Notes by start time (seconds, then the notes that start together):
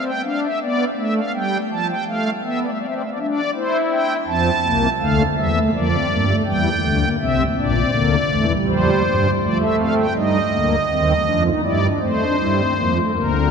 Already playing: C4
0.05 G5
0.23 D4 F5
0.43 E5
0.61 B3 D5
0.97 A3 E5
1.16 F5
1.35 G3 G5
1.71 F3 A5
1.88 G5
2.07 A3 F5
2.43 B3 E5
2.63 D5
2.71 E5
2.79 C4 D5
2.86 E5
2.94 D5
3.02 E5
3.11 D5
3.18 D4 E5
3.27 D5
3.54 E4 C5
3.91 G5
4.27 F2 F3 C4 A5
4.64 C2 C3 A#3
5.00 D2 D3 A3 F5
5.36 E2 E3 G3 E5
5.55 A3
5.73 F2 F3 A#3 D5
5.92 C4
6.09 G2 G3 A#3
6.27 A3
6.46 E2 E3 G3 G5
6.81 D2 D3 A3
7.01 A#3
7.20 C2 C3 C4 E5
7.57 A#1 A#2 D4 D5
7.75 C4
7.92 D2 D3 A#3
8.29 E2 E3 A3
8.49 G3
8.66 F2 F3 C5
9.03 G2 G3
9.42 F3 A3 D5
9.60 E5
9.78 C4 F5
9.97 G5
10.15 G2 G3 D#4 D#5
10.52 D2 D3 A#3
10.90 D#2 D#3 C4
11.26 F2 F3 D4
11.46 D#4
11.63 G2 G3 E4 D5
11.82 D4
12.00 A3 C4 C5
12.19 D4
12.37 G2 G3 E4
12.57 C4
12.76 F2 F3 A#3
12.95 A3
13.15 D2 D3 A#3 A#4
13.33 C4